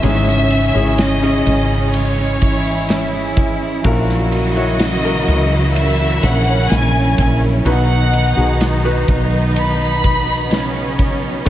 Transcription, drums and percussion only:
0.03 ride medium
0.28 snare soft
0.50 ride medium
0.98 snare loud
0.98 ride medium
1.47 ride soft
1.94 ride medium
2.42 kick medium
2.42 ride medium
2.89 snare loud
2.89 ride medium
3.37 kick medium
3.37 ride medium
3.84 kick loud
3.84 ride medium
4.09 snare soft
4.32 ride medium
4.80 snare loud
4.80 ride medium
5.28 ride soft
5.76 ride medium
6.23 ride medium
6.70 snare loud
6.70 ride medium
7.18 kick medium
7.18 ride medium
7.66 ride medium
8.13 ride medium
8.61 snare medium
8.61 ride medium
9.08 kick medium
9.08 ride medium
9.56 ride medium
10.04 kick medium
10.04 ride medium
10.51 snare loud
10.51 ride medium
10.99 kick loud
10.99 ride medium

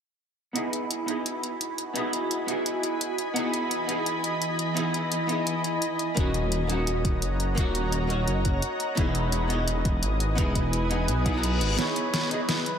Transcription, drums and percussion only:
0.56 closed hi-hat medium
0.73 closed hi-hat medium
0.91 closed hi-hat medium
1.08 closed hi-hat medium
1.26 closed hi-hat medium
1.43 closed hi-hat medium
1.61 closed hi-hat medium
1.78 closed hi-hat medium
1.96 closed hi-hat medium
2.13 closed hi-hat medium
2.31 closed hi-hat medium
2.48 closed hi-hat medium
2.66 closed hi-hat medium
2.83 closed hi-hat medium
3.01 closed hi-hat medium
3.18 closed hi-hat medium
3.36 closed hi-hat medium
3.54 closed hi-hat medium
3.71 closed hi-hat medium
3.89 closed hi-hat medium
4.06 closed hi-hat medium
4.24 closed hi-hat medium
4.42 closed hi-hat medium
4.59 closed hi-hat medium
4.77 closed hi-hat medium
4.94 closed hi-hat medium
5.12 closed hi-hat medium
5.29 closed hi-hat medium
5.47 closed hi-hat medium
5.64 closed hi-hat medium
5.82 closed hi-hat medium
5.99 closed hi-hat medium
6.17 kick loud
6.17 closed hi-hat medium
6.34 closed hi-hat medium
6.52 closed hi-hat medium
6.70 closed hi-hat medium
6.87 closed hi-hat medium
7.05 kick medium
7.05 closed hi-hat medium
7.22 closed hi-hat medium
7.40 closed hi-hat medium
7.57 kick loud
7.57 closed hi-hat medium
7.75 closed hi-hat medium
7.92 closed hi-hat medium
8.10 closed hi-hat medium
8.28 closed hi-hat medium
8.45 kick medium
8.45 closed hi-hat medium
8.62 closed hi-hat medium
8.80 closed hi-hat medium
8.97 kick loud
8.97 closed hi-hat medium
9.15 closed hi-hat medium
9.32 closed hi-hat medium
9.50 closed hi-hat medium
9.68 closed hi-hat medium
9.85 kick medium
9.85 closed hi-hat medium
10.03 closed hi-hat medium
10.20 closed hi-hat medium
10.38 kick loud
10.38 closed hi-hat medium
10.55 kick medium
10.55 closed hi-hat medium
10.73 closed hi-hat medium
10.91 closed hi-hat medium
11.08 closed hi-hat medium
11.26 kick medium
11.26 closed hi-hat medium
11.43 closed hi-hat medium
11.61 closed hi-hat medium
11.79 snare soft
11.79 closed hi-hat medium
11.96 closed hi-hat medium
12.14 snare soft
12.14 closed hi-hat medium
12.31 closed hi-hat medium
12.49 snare medium
12.49 closed hi-hat medium
12.66 closed hi-hat medium

